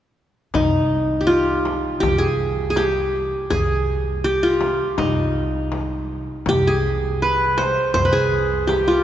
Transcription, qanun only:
0.55 1.99 D#4 medium
1.21 2.00 G4 medium
1.27 2.61 F4 medium
2.00 2.24 G4 medium
2.18 2.70 G#4 medium
2.70 2.83 G#4 medium
2.77 3.56 G4 medium
3.50 4.30 G#4 medium
4.24 5.50 G4 medium
4.43 5.78 F4 medium
4.98 6.42 D#4 medium
6.49 6.73 G4 medium
6.67 7.89 G#4 medium
7.22 7.64 B4 medium
7.58 7.94 C5 medium
7.94 8.11 C5 medium
8.05 9.04 B4 medium
8.13 8.73 G#4 medium
8.67 9.04 G4 medium
8.88 9.04 F4 medium

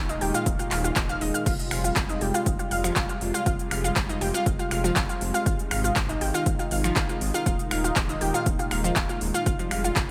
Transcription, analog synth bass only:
0.00 0.16 D#1 medium
0.21 0.31 D#1 loud
0.46 0.56 D#1 medium
0.71 0.91 D#1 medium
0.96 1.16 D#1 medium
1.21 1.31 D#1 medium
1.46 1.56 F1 loud
1.71 1.91 F1 medium
1.96 2.16 F1 medium
2.21 2.31 F1 loud
2.46 2.56 F1 loud
2.71 2.91 F1 loud
2.96 3.06 F1 medium
3.21 3.31 F1 medium
3.46 3.56 F1 loud
3.71 3.91 F1 medium
3.96 4.16 F1 medium
4.21 4.31 F1 loud
4.46 4.56 F1 loud
4.71 4.91 F1 loud
4.96 5.06 F1 medium
5.21 5.31 F1 loud
5.46 5.56 G#1 loud
5.71 5.91 G#1 medium
5.96 6.16 G#1 medium
6.21 6.31 G#1 loud
6.46 6.56 G#1 medium
6.71 6.91 G#1 loud
6.96 7.06 G#1 medium
7.21 7.31 G#1 loud
7.46 7.56 D#1 loud
7.71 7.91 D#1 medium
7.96 8.16 D#1 medium
8.21 8.31 D#1 loud
8.46 8.56 D#1 loud
8.71 8.91 D#1 loud
8.96 9.06 D#1 medium
9.21 9.31 D#1 loud
9.46 9.56 F1 loud
9.71 9.91 F1 medium
9.96 10.11 F1 medium

